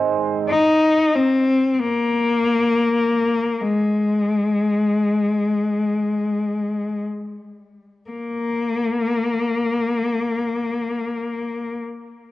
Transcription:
0.00 0.44 G#2 soft
0.00 0.44 D#3 soft
0.00 0.41 G#3 medium
0.00 0.41 C4 medium
0.00 0.41 D#4 medium
0.00 0.42 C5 medium
0.49 1.16 D#4 medium
1.15 1.74 C4 medium
1.74 1.82 C4 soft
1.80 3.62 A#3 medium
3.60 7.02 G#3 medium
8.10 11.79 A#3 medium

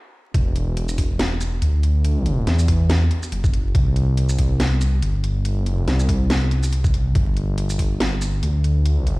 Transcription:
0.34 1.60 E1 medium
0.34 kick loud
0.34 closed hi-hat medium
0.56 closed hi-hat medium
0.77 closed hi-hat medium
0.89 shaker medium
0.98 kick medium
0.98 open hi-hat loud
1.19 snare loud
1.19 closed hi-hat medium
1.41 closed hi-hat medium
1.41 shaker medium
1.62 2.46 D2 medium
1.62 closed hi-hat medium
1.83 closed hi-hat medium
2.04 closed hi-hat medium
2.26 closed hi-hat medium
2.47 3.09 E2 loud
2.47 snare medium
2.47 closed hi-hat medium
2.59 shaker medium
2.68 kick medium
2.68 open hi-hat loud
2.90 snare loud
2.90 closed hi-hat medium
3.11 closed hi-hat medium
3.23 shaker medium
3.32 3.73 F#1 loud
3.32 closed hi-hat medium
3.44 kick loud
3.44 shaker medium
3.54 closed hi-hat medium
3.75 5.01 C2 loud
3.75 kick loud
3.75 closed hi-hat medium
3.96 closed hi-hat medium
4.17 closed hi-hat medium
4.29 shaker medium
4.39 kick medium
4.39 open hi-hat medium
4.60 snare loud
4.60 closed hi-hat medium
4.81 closed hi-hat medium
4.81 shaker medium
5.02 5.61 G1 loud
5.02 closed hi-hat medium
5.24 closed hi-hat medium
5.45 closed hi-hat medium
5.61 5.86 F#1 loud
5.66 closed hi-hat medium
5.87 6.29 C2 loud
5.87 snare medium
5.87 closed hi-hat medium
5.99 shaker medium
6.09 kick medium
6.09 open hi-hat medium
6.30 7.14 C2 loud
6.30 snare loud
6.30 closed hi-hat medium
6.51 closed hi-hat medium
6.63 shaker medium
6.73 closed hi-hat medium
6.84 kick loud
6.84 shaker medium
6.94 closed hi-hat medium
7.15 8.41 G1 medium
7.15 kick loud
7.15 closed hi-hat medium
7.37 closed hi-hat soft
7.58 closed hi-hat medium
7.70 shaker medium
7.79 kick medium
7.79 open hi-hat medium
8.00 snare loud
8.00 closed hi-hat medium
8.22 closed hi-hat medium
8.22 shaker medium
8.43 9.20 D2 loud
8.43 closed hi-hat medium
8.64 closed hi-hat medium
8.86 closed hi-hat medium
9.07 closed hi-hat soft

